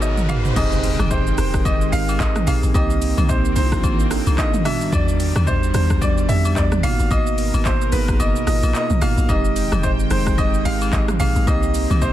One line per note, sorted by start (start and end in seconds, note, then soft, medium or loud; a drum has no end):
0.00 0.52 G#1 medium
0.00 0.54 B2 medium
0.00 0.29 B3 medium
0.00 0.54 B3 medium
0.00 0.29 D#4 medium
0.00 0.30 F#4 medium
0.00 0.54 F#4 medium
0.00 0.30 G#4 medium
0.00 0.25 B4 medium
0.00 0.58 B4 loud
0.00 0.20 C#5 medium
0.00 0.30 D#5 medium
0.00 riser medium
0.00 low woodblock medium
0.00 shaker medium
0.18 mid tom medium
0.18 shaker soft
0.29 0.52 B3 medium
0.29 0.52 D#4 medium
0.29 0.52 F#4 medium
0.29 0.52 G#4 medium
0.29 0.35 F5 medium
0.29 floor tom medium
0.29 high agogo medium
0.29 shaker medium
0.45 floor tom medium
0.45 shaker medium
0.56 0.97 F1 loud
0.56 2.72 D#3 medium
0.56 2.72 G#3 medium
0.56 1.23 C4 loud
0.56 1.24 D#4 medium
0.56 1.24 G4 medium
0.56 1.24 G#4 loud
0.56 1.07 D#5 loud
0.56 2.72 G5 medium
0.56 kick loud
0.56 crash loud
0.56 impact medium
0.56 high agogo medium
0.56 shaker medium
0.72 shaker medium
0.84 open hi-hat medium
0.84 shaker loud
0.99 1.36 F1 loud
0.99 cross-stick loud
0.99 mid tom medium
0.99 high agogo medium
0.99 shaker medium
1.11 1.36 C5 medium
1.11 kick loud
1.11 low woodblock medium
1.11 shaker medium
1.27 shaker medium
1.38 1.89 F1 loud
1.38 1.83 C4 medium
1.38 1.84 D#4 medium
1.38 1.84 G4 medium
1.38 1.84 A#4 medium
1.38 1.63 C5 medium
1.38 cross-stick loud
1.38 open hi-hat medium
1.38 shaker medium
1.54 kick loud
1.54 cross-stick loud
1.54 shaker medium
1.65 1.93 D#5 medium
1.65 kick loud
1.65 high agogo medium
1.65 shaker medium
1.81 shaker medium
1.92 2.18 G#1 medium
1.92 2.38 C4 medium
1.92 2.38 D#4 medium
1.92 2.38 G4 medium
1.92 2.39 A#4 medium
1.92 2.21 F5 medium
1.92 open hi-hat medium
1.92 shaker medium
2.09 high agogo medium
2.09 shaker medium
2.20 2.46 G#1 loud
2.20 2.45 D#5 loud
2.20 kick medium
2.20 clap medium
2.20 low woodblock medium
2.20 shaker medium
2.36 cross-stick loud
2.36 mid tom medium
2.36 shaker medium
2.47 2.62 A#1 loud
2.47 2.70 C4 medium
2.47 2.70 D#4 medium
2.47 2.70 G4 medium
2.47 2.70 G#4 medium
2.47 2.53 F5 loud
2.47 open hi-hat medium
2.47 high agogo medium
2.47 shaker loud
2.63 2.74 A#1 loud
2.63 shaker medium
2.74 3.15 C2 loud
2.74 6.80 D#3 medium
2.74 3.42 A#3 loud
2.74 4.64 A#3 medium
2.74 4.64 C4 medium
2.74 3.42 C4 medium
2.74 3.42 D#4 medium
2.74 3.42 G4 loud
2.74 3.31 D#5 loud
2.74 kick loud
2.74 high agogo medium
2.74 shaker medium
2.90 shaker medium
3.02 open hi-hat medium
3.02 shaker loud
3.17 3.54 C2 loud
3.17 mid tom medium
3.17 high agogo medium
3.17 shaker medium
3.29 3.54 C5 medium
3.29 kick loud
3.29 low woodblock medium
3.29 shaker medium
3.45 shaker medium
3.56 3.85 C2 loud
3.56 4.02 A#3 medium
3.56 4.02 D4 medium
3.56 4.02 D#4 medium
3.56 3.64 E4 medium
3.56 4.40 C5 loud
3.56 open hi-hat medium
3.56 shaker medium
3.64 4.05 F4 medium
3.72 kick loud
3.72 cross-stick loud
3.72 shaker medium
3.83 4.24 A#1 loud
3.83 kick loud
3.83 high agogo medium
3.83 shaker medium
4.00 shaker medium
4.11 4.56 A#3 medium
4.11 4.56 D4 medium
4.11 4.56 D#4 medium
4.11 4.57 A4 medium
4.11 cross-stick loud
4.11 open hi-hat medium
4.11 shaker medium
4.27 4.37 C2 loud
4.27 high agogo medium
4.27 shaker medium
4.38 4.66 D#5 medium
4.38 kick loud
4.38 clap medium
4.38 low woodblock medium
4.38 shaker medium
4.54 mid tom medium
4.54 shaker medium
4.65 5.53 G3 medium
4.65 6.81 G3 medium
4.65 5.54 B3 medium
4.65 5.54 D4 medium
4.65 5.54 F#4 medium
4.65 4.93 E5 loud
4.65 cross-stick medium
4.65 open hi-hat medium
4.65 high agogo medium
4.65 shaker loud
4.81 shaker medium
4.92 5.33 E2 loud
4.92 5.49 D5 loud
4.92 kick loud
4.92 high agogo medium
4.92 shaker medium
5.08 shaker medium
5.20 open hi-hat medium
5.20 shaker loud
5.36 5.72 E2 loud
5.36 cross-stick loud
5.36 mid tom medium
5.36 high agogo medium
5.36 shaker medium
5.47 5.73 C5 medium
5.47 kick medium
5.47 low woodblock medium
5.47 shaker medium
5.63 shaker medium
5.74 6.26 E2 loud
5.74 6.20 G3 medium
5.74 6.20 B3 medium
5.74 6.20 D4 medium
5.74 6.20 G4 medium
5.74 6.02 C5 medium
5.74 cross-stick loud
5.74 open hi-hat medium
5.74 shaker medium
5.90 kick loud
5.90 cross-stick loud
5.90 shaker medium
6.01 6.30 D5 loud
6.01 kick loud
6.01 high agogo medium
6.01 shaker medium
6.18 shaker medium
6.29 6.55 F2 loud
6.29 6.74 G3 medium
6.29 6.74 B3 medium
6.29 6.75 D4 medium
6.29 6.75 G4 medium
6.29 6.57 E5 loud
6.29 open hi-hat medium
6.29 shaker medium
6.45 high agogo medium
6.45 shaker medium
6.56 6.82 E2 medium
6.56 6.84 D5 medium
6.56 kick medium
6.56 clap medium
6.56 low woodblock medium
6.56 shaker medium
6.72 cross-stick loud
6.72 mid tom loud
6.72 shaker medium
6.83 6.98 G#1 loud
6.83 9.27 B2 medium
6.83 7.72 A#3 medium
6.83 7.72 B3 medium
6.83 7.72 D#4 medium
6.83 6.92 F4 medium
6.83 9.27 A#4 medium
6.83 7.12 F5 loud
6.83 open hi-hat medium
6.83 high agogo medium
6.83 shaker loud
6.91 7.75 F#4 medium
6.99 7.10 G#1 medium
6.99 shaker medium
7.11 7.51 G#1 loud
7.11 7.61 D#5 loud
7.11 kick loud
7.11 high agogo medium
7.11 shaker medium
7.26 shaker medium
7.38 open hi-hat medium
7.38 shaker loud
7.54 7.90 G#1 loud
7.54 high agogo medium
7.54 shaker medium
7.65 7.91 C5 medium
7.65 kick loud
7.65 clap medium
7.65 low woodblock medium
7.65 shaker medium
7.81 shaker medium
7.92 8.18 G#1 loud
7.92 8.38 A#3 medium
7.92 8.38 B3 medium
7.92 8.38 D#4 medium
7.92 8.39 G#4 medium
7.92 8.21 B4 medium
7.92 open hi-hat medium
7.92 shaker medium
8.08 kick loud
8.08 cross-stick loud
8.08 shaker medium
8.19 8.35 F#1 loud
8.19 8.45 D#5 loud
8.19 high agogo medium
8.19 shaker medium
8.36 shaker medium
8.47 8.62 G#1 medium
8.47 8.92 A#3 medium
8.47 8.93 B3 medium
8.47 8.93 D#4 medium
8.47 8.93 F4 medium
8.47 8.72 D#5 loud
8.47 cross-stick loud
8.47 open hi-hat medium
8.47 shaker medium
8.63 8.74 A#1 loud
8.63 high agogo medium
8.63 shaker medium
8.74 9.02 D#5 loud
8.74 clap medium
8.74 low woodblock medium
8.74 shaker medium
8.90 9.01 B1 medium
8.90 mid tom loud
8.90 shaker medium
9.01 9.17 G#1 medium
9.01 9.24 A#3 medium
9.01 9.25 B3 medium
9.01 9.25 D#4 medium
9.01 9.25 F#4 medium
9.01 9.30 F5 loud
9.01 cross-stick medium
9.01 open hi-hat medium
9.01 high agogo medium
9.01 shaker loud
9.18 9.28 A#1 loud
9.18 shaker medium
9.29 9.70 F1 loud
9.29 11.45 D#3 medium
9.29 9.96 G#3 loud
9.29 11.45 G#3 medium
9.29 9.96 C4 medium
9.29 9.97 D#4 medium
9.29 9.97 G4 loud
9.29 9.85 D#5 loud
9.29 11.45 G5 medium
9.29 kick loud
9.29 high agogo medium
9.29 shaker medium
9.45 shaker medium
9.56 open hi-hat medium
9.56 shaker loud
9.72 10.09 F1 loud
9.72 cross-stick loud
9.72 mid tom medium
9.72 high agogo medium
9.72 shaker medium
9.83 9.89 C5 medium
9.83 kick loud
9.83 low woodblock medium
9.83 shaker medium
10.00 shaker medium
10.10 10.62 F1 loud
10.10 10.56 G#3 medium
10.10 10.56 C4 medium
10.10 10.57 D#4 medium
10.10 10.57 G#4 medium
10.10 10.39 C5 loud
10.10 cross-stick loud
10.10 open hi-hat medium
10.10 shaker medium
10.27 kick loud
10.27 cross-stick loud
10.27 shaker medium
10.38 10.66 D#5 loud
10.38 kick loud
10.38 high agogo medium
10.38 shaker medium
10.54 shaker medium
10.65 10.91 G#1 medium
10.65 11.11 G#3 medium
10.65 11.11 C4 medium
10.65 11.11 D#4 medium
10.65 11.11 G4 medium
10.65 10.93 F5 loud
10.65 open hi-hat medium
10.65 shaker medium
10.81 high agogo medium
10.81 shaker medium
10.92 11.18 G#1 loud
10.92 10.99 D#5 loud
10.92 kick loud
10.92 clap medium
10.92 low woodblock medium
10.92 shaker medium
11.08 cross-stick loud
11.08 mid tom medium
11.08 shaker medium
11.20 11.35 A#1 loud
11.20 11.42 G#3 medium
11.20 11.43 C4 medium
11.20 11.43 D#4 medium
11.20 11.43 G#4 medium
11.20 11.45 F5 loud
11.20 open hi-hat medium
11.20 high agogo medium
11.20 shaker loud
11.36 11.47 A#1 loud
11.36 shaker medium
11.47 11.88 C2 loud
11.47 12.13 D#3 medium
11.47 12.13 A#3 loud
11.47 12.13 A#3 medium
11.47 12.13 C4 loud
11.47 12.13 C4 medium
11.47 12.13 D#4 medium
11.47 12.13 G4 loud
11.47 12.03 D#5 loud
11.47 kick loud
11.47 high agogo medium
11.47 shaker medium
11.63 shaker medium
11.74 open hi-hat medium
11.74 shaker loud
11.90 12.13 C2 loud
11.90 mid tom medium
11.90 high agogo medium
11.90 shaker medium
12.02 12.13 C5 medium
12.02 kick medium
12.02 low woodblock medium
12.02 shaker medium